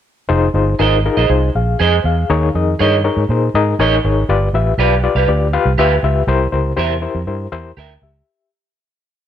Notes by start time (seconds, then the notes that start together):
0.29 F1 D#4 F4 G#4 C5
0.54 G1 D#4 F4 G#4 C5
0.79 G#1 D#4 F4 G#4 A#4 C5 D#5
1.05 D#4 F4 G#4 A#4
1.17 A#1 G#4 C5 D#5
1.29 C2 D#4 F4 G#4 C5
1.55 A#1 G#4 F5
1.79 F2 G#4 C5 D#5 G#5
2.04 E2 G#4 F5
2.30 D#2 D#3 D#4 G#4 A#4 C#5
2.54 F2 D#4 G#4 A#4 D#5
2.79 G2 D#4 G#4 A#4 C#5 D#5
3.04 D#4 G#4 A#4 C#5
3.17 G#2
3.29 A#2 D#4 G#4 A#4 C5
3.54 G#2 D#4 G#4 A#4 D#5
3.79 A1 D#4 G#4 A#4 C#5 D#5
4.04 G#1 D#4 G#4 A#4 C#5
4.29 G1 G2 F4 G4 B4 D5
4.53 A1 F4 G4 B4 E5
4.78 B1 F4 G4 B4 D5 F5
5.04 F4 G4 B4 D5
5.15 C2 G4 B4 F5
5.28 D2 F4 G4 B4 D5
5.53 F4 G4 B4 F5
5.65 C2
5.78 D2 F4 G4 B4 E5 F5
6.03 C#2 F4 G4 B4 E5
6.27 C2 C3 E4 G4 A#4 C5
6.52 C#2 E4 G4 A#4 C5
6.76 E2 E4 G4 A#4 C5 E5
7.02 E4 G4 A#4 C5
7.15 F2
7.27 G2 E4 G4 A#4 C5
7.52 E2 E4 G4 A#4 C5
7.77 D2 G4 A#4 E5 G5
8.02 C#2 G4 E5